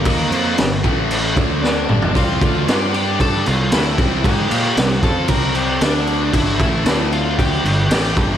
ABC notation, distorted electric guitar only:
X:1
M:4/4
L:1/8
Q:1/4=115
K:Gdor
V:1 name="Distorted electric guitar" clef=bass
[_E,B,_E] [F,CF] [G,,D,] [A,,=E,A,]2 [D,A,D]2 [G,,D,G,] | [C,G,C] [D,A,D] [G,DG]3 [C,G,] [D,A,D] [C,G,C] | [_A,_E_A] [B,FB] [C,G,] [F,CF] [C,G,C]2 [D,=A,D]2 | [G,,D,G,] [A,,E,A,] [D,A,D]3 [G,,D,] [A,,E,A,] [G,,D,G,] |]